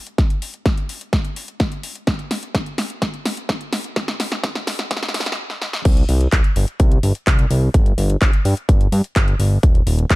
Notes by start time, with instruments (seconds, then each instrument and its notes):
0.07 closed hi-hat
0.18 kick, snare, closed hi-hat
0.30 closed hi-hat
0.42 open hi-hat
0.54 closed hi-hat
0.66 kick, snare, closed hi-hat
0.78 closed hi-hat
0.89 open hi-hat
1.01 closed hi-hat
1.13 kick, snare, closed hi-hat
1.25 closed hi-hat
1.36 open hi-hat
1.48 closed hi-hat
1.60 kick, snare, closed hi-hat
1.72 closed hi-hat
1.83 open hi-hat
1.95 closed hi-hat
2.07 kick, snare, closed hi-hat
2.19 closed hi-hat
2.31 snare, open hi-hat
2.43 closed hi-hat
2.55 kick, snare, closed hi-hat
2.66 closed hi-hat
2.78 snare, open hi-hat
2.90 closed hi-hat
3.02 kick, snare, closed hi-hat
3.14 closed hi-hat
3.26 snare, open hi-hat
3.37 closed hi-hat
3.49 kick, snare, closed hi-hat
3.61 closed hi-hat
3.73 snare, open hi-hat
3.84 closed hi-hat
3.96 kick, snare, closed hi-hat
4.08 snare, closed hi-hat
4.20 snare, open hi-hat
4.32 snare, closed hi-hat
4.44 kick, snare, closed hi-hat
4.55 snare, closed hi-hat
4.67 snare, open hi-hat
4.79 snare, closed hi-hat
4.91 kick, snare, closed hi-hat
4.97 snare
5.03 snare, closed hi-hat
5.09 snare
5.14 snare, open hi-hat
5.20 snare
5.26 snare, closed hi-hat
5.32 snare
5.50 snare
5.62 snare
5.73 snare
5.85 analog synth bass C2, kick, closed hi-hat, crash
5.97 closed hi-hat
6.09 analog synth bass C2, open hi-hat
6.21 closed hi-hat
6.32 analog synth bass C2, kick, clap, closed hi-hat
6.44 closed hi-hat
6.56 analog synth bass G1, open hi-hat
6.68 closed hi-hat
6.80 analog synth bass C2, kick, closed hi-hat
6.92 closed hi-hat
7.03 analog synth bass G1, open hi-hat
7.15 closed hi-hat
7.27 analog synth bass C2, kick, clap, closed hi-hat
7.39 closed hi-hat
7.51 analog synth bass C2, open hi-hat
7.74 analog synth bass G1, kick, closed hi-hat
7.86 closed hi-hat
7.98 analog synth bass G1, open hi-hat
8.10 closed hi-hat
8.22 analog synth bass G1, kick, clap, closed hi-hat
8.33 closed hi-hat
8.45 analog synth bass G2, open hi-hat
8.57 closed hi-hat
8.69 analog synth bass G1, kick, closed hi-hat
8.81 closed hi-hat
8.92 analog synth bass G2, open hi-hat
9.04 closed hi-hat
9.16 analog synth bass G1, kick, clap, closed hi-hat
9.28 closed hi-hat
9.40 analog synth bass G1, open hi-hat
9.63 analog synth bass D#1, kick, closed hi-hat
9.75 closed hi-hat
9.87 analog synth bass D#1, open hi-hat
9.99 closed hi-hat
10.10 analog synth bass D#1, kick, clap, closed hi-hat